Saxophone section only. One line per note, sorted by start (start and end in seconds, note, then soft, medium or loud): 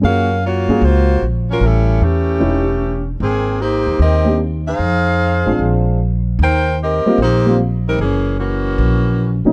0.05 0.42 C#4 medium
0.05 0.41 F#4 medium
0.05 0.42 A#4 medium
0.05 0.42 F5 loud
0.46 0.83 A#3 medium
0.46 0.84 F4 medium
0.46 0.83 F#4 medium
0.46 0.84 C#5 medium
0.84 1.23 A#3 medium
0.84 1.24 F4 medium
0.84 1.24 F#4 medium
0.84 1.23 C5 medium
1.51 1.62 F#3 medium
1.51 1.62 C#4 medium
1.51 1.63 F4 medium
1.51 1.62 A#4 medium
1.65 2.03 G3 medium
1.65 2.02 C#4 medium
1.65 2.03 E4 medium
1.65 2.03 A4 medium
2.04 3.09 E3 medium
2.04 3.09 A3 medium
2.04 3.09 C#4 medium
2.04 3.09 G4 medium
3.21 3.58 D#3 medium
3.21 3.58 A#3 medium
3.21 3.58 C4 medium
3.21 3.58 G#4 medium
3.61 4.01 A#3 medium
3.61 4.01 D#4 medium
3.61 4.01 G4 medium
3.61 4.01 C5 medium
4.02 4.39 C4 medium
4.02 4.38 G4 medium
4.02 4.39 A#4 medium
4.02 4.39 D#5 medium
4.68 5.57 D#4 medium
4.68 5.83 G#4 medium
4.68 5.83 C5 medium
4.68 5.83 F5 medium
6.42 6.78 D#4 medium
6.42 6.78 A#4 medium
6.42 6.79 C5 medium
6.42 6.78 G5 loud
6.83 7.21 C4 medium
6.83 7.21 G4 medium
6.83 7.21 A#4 medium
6.83 7.21 D#5 medium
7.22 7.58 A#3 medium
7.22 7.58 D#4 medium
7.22 7.58 G4 medium
7.22 7.58 C5 medium
7.88 7.99 G3 medium
7.88 7.99 C4 medium
7.88 7.99 D#4 medium
7.88 7.99 A#4 medium
8.01 8.37 E3 medium
8.01 8.37 A#3 medium
8.01 8.37 C#4 medium
8.01 8.37 G#4 medium
8.40 9.41 E3 medium
8.40 9.41 A#3 medium
8.40 9.41 C#4 medium
8.40 9.41 F#4 medium